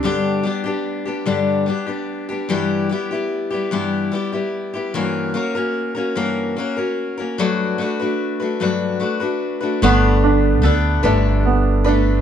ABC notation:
X:1
M:6/8
L:1/16
Q:3/8=49
K:G
V:1 name="Felt piano"
z12 | z12 | z12 | z12 |
B,2 D2 A2 D2 B,2 D2 |]
V:2 name="Steel-string acoustic guitar"
[G,,D,G,B,DG]2 [G,B,DG] [G,B,DG]2 [G,B,DG] [G,,D,G,B,DG]2 [G,B,DG] [G,B,DG]2 [G,B,DG] | [G,,E,G,B,EG]2 [G,B,EG] [G,B,EG]2 [G,B,EG] [G,,E,G,B,EG]2 [G,B,EG] [G,B,EG]2 [G,B,EG] | [G,,E,^A,^CF^A]2 [A,CFA] [A,CFA]2 [A,CFA] [G,,E,A,CFA]2 [A,CFA] [A,CFA]2 [A,CFA] | [G,,F,A,DFB]2 [A,DFB] [A,DFB]2 [A,DFB] [G,,F,A,DFB]2 [A,DFB] [A,DFB]2 [A,DFB] |
[G,,D,A,B,DB]4 [A,B,DB]2 [G,,D,A,B,DB]4 [A,B,DB]2 |]
V:3 name="Upright bass" clef=bass
z12 | z12 | z12 | z12 |
G,,,4 D,,2 G,,,6 |]